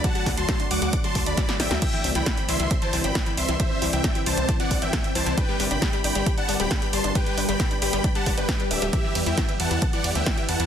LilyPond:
<<
  \new Staff \with { instrumentName = "Supersaw synth" } { \time 4/4 \key g \major \tempo 4 = 135 <fis'' a''>8 r16 <a'' c'''>8 r16 <fis'' d'''>8 r16 <a'' c'''>8 <d'' b''>8 r16 <e'' g''>8 | <e'' g''>8 r16 <g'' b''>8 r16 <e'' c'''>8 r16 <c'' a''>8 <g'' b''>8 r16 <e'' c'''>8 | <c'' e''>8 r16 <e'' g''>8 r16 <c'' a''>8 r16 <d'' fis''>8 <e'' g''>8 r16 <c'' a''>8 | <b' g''>8 r16 <g'' b''>8 r16 <g'' b''>8 r16 <fis'' a''>8 <g'' b''>8 r16 <a'' c'''>8 |
<b' g''>8 r16 <g'' b''>8 r16 <g'' b''>8 r16 <fis'' a''>8 <b' g''>8 r16 <g' e''>8 | <g' e''>8 r16 <e'' g''>8 r16 <fis'' a''>8 r16 <d'' fis''>8 <e'' g''>8 r16 <fis'' a''>8 | }
  \new Staff \with { instrumentName = "Ambient pad" } { \time 4/4 \key g \major << { d''1~ | d''1~ | d''1~ | d''1~ |
d''1 | b'1 | } \\ { <d a fis'>1 | <c c' e'>1~ | <c c' e'>1 | <g g' b'>1~ |
<g g' b'>1 | <e e'>1 | } >> }
  \new Staff \with { instrumentName = "Synth pluck" } { \clef bass \time 4/4 \key g \major fis16 fis16 d'16 fis16 fis16 d'16 fis16 fis16 d'16 fis16 fis16 d'16 fis16 fis16 d'16 fis16 | e16 e16 c'16 e16 e16 c'16 e16 e16 c'16 e16 e16 c'16 e16 e16 c'16 e16 | e16 c'16 e16 e16 r16 e16 e16 c'16 e16 e16 c'16 e16 e16 c'16 e16 e16 | d'16 g16 g16 d'16 g16 g16 d'16 g16 r16 d'16 g16 g16 d'16 g16 g16 d'16 |
g16 g16 d'16 g16 r16 d'16 g16 g16 d'16 g16 g16 d'16 g16 g16 d'16 g16 | e16 e16 b16 e16 e16 b16 e16 e16 b16 e16 e16 b16 e16 e16 b16 e16 | }
  \new Staff \with { instrumentName = "Analog synth bass" } { \clef bass \time 4/4 \key g \major r8 d,16 d,16 r8 d,16 d,16 r8 d,16 d,16 r8 a,,16 d,16 | r8 c,16 c,16 r8 c,16 c,16 r8 c,16 g,,16 r8 c,16 c,16 | r8 c,16 c,16 r8 c,16 c,16 r8 c,16 g,,16 r8 c,16 c,16 | r8 g,,16 g,,16 r8 g,,16 g,,16 r8 g,,16 d,,16 r8 g,,16 g,,16 |
r8 g,,16 g,,16 r8 g,,16 g,,16 r8 g,,16 g,,16 r8 d,,16 d,,16 | r8 e,16 e,16 r8 e,16 e,16 r8 e,16 d,16 r8 e,16 e,16 | }
  \new DrumStaff \with { instrumentName = "Drums" } \drummode { \time 4/4 <hh bd>16 hh16 <hho bd sn>16 hh16 <hh bd sn>16 hh16 hho16 hh16 <hh bd>16 hh16 <hho bd>16 hh16 <hh bd sn>16 <hh sn>16 <hho sn>16 <hh sn>16 | <cymc hh bd>8 hho16 hh16 <hh bd sn>16 hh16 hho16 hh16 <hh bd>16 hh16 hho16 hh16 <hh bd sn>16 hh16 hho16 hh16 | <hh bd>8 hho16 hh16 <hh bd sn>16 hh16 hho16 hh16 <hh bd>16 hh16 <hho bd>16 hh16 <hh bd sn>16 hh16 hho16 hh16 | <hh bd>8 hho16 hh16 <hh bd sn>16 hh16 hho16 hh16 <hh bd>16 hh16 hho16 hh16 <hh bd sn>16 hh16 hho16 hh16 |
<hh bd>16 hh16 hho16 hh16 <hh bd sn>16 hh16 hho16 hh16 <hh bd>16 hh16 <hho bd>16 hh16 <hh bd sn>16 hh16 hho16 hh16 | <hh bd>8 <hho cymr>16 hh16 <hh bd sn>16 hh16 <hho cymr>16 hh16 <hh bd>16 hh16 <hho cymr>16 hh16 <hh bd sn>16 hh16 <hho cymr>16 hh16 | }
>>